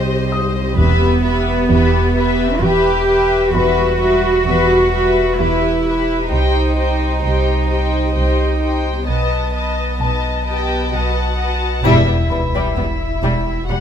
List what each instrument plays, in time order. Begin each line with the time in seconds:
Already playing: double bass section C2, sub bass C2, cello section G3, viola section G4, violin section C5 D#5
0.32 grand piano D#6
0.77 sub bass E1, double bass section E2, timpani E2, cello section B3, viola section G4, violin section B4 E5
1.24 viola section G4, violin section B4 E5
1.69 double bass section E2, viola section G4, violin section B4 E5
2.15 viola section G4, violin section B4 E5
2.60 double bass section E2, viola section G4, cello section G4, violin section B4 E5
3.08 viola section G4, violin section B4 E5
3.54 sub bass E1, double bass section E2, viola section G3, cello section F#4, violin section B4 E5, grand piano B4 B5
4.00 viola section G3, violin section B4 E5
4.45 double bass section E2, viola section G3, violin section B4 E5
4.91 viola section G3, violin section B4 E5
5.38 double bass section E2, cello section E4, viola section G4, violin section B4 E5
5.85 viola section G4, violin section B4 E5
6.31 sub bass C2, double bass section C2, cello section D#4, viola section G4, violin section C5 G5
6.77 viola section G4, violin section C5 G5
7.22 double bass section C2, viola section G4, violin section C5 G5
7.68 viola section G4, violin section C5 G5
8.13 double bass section C2, viola section G4, violin section C5 G5
8.60 viola section G4, violin section C5 G5
9.07 sub bass B1, double bass section B1, cello section B3, viola section B4, violin section D#5 A5
9.53 viola section B4, violin section D#5 A5
10.00 double bass section B1, viola section B4, violin section D#5 A5, grand piano A5
10.46 viola section G4 B4, violin section D#5 G5 A5
10.91 double bass section B1, viola section F#4 B4, violin section D#5 F#5 A5
11.37 viola section B4, violin section D#5 A5
11.84 double bass section E1, sub bass E1, cello section E2, violin section G3 E5, viola section E4, sub drop, triangle
12.06 cello section E2, violin section G3 B3
12.30 double bass section E1, cello section E2, violin section G3, grand piano B4 B5
12.54 cello section E2, violin section G3
12.77 double bass section E1, cello section E2, violin section G3 B3
13.23 double bass section E1, cello section E2, violin section G3
13.69 double bass section E1, cello section E2, violin section G3 F#5, viola section F#4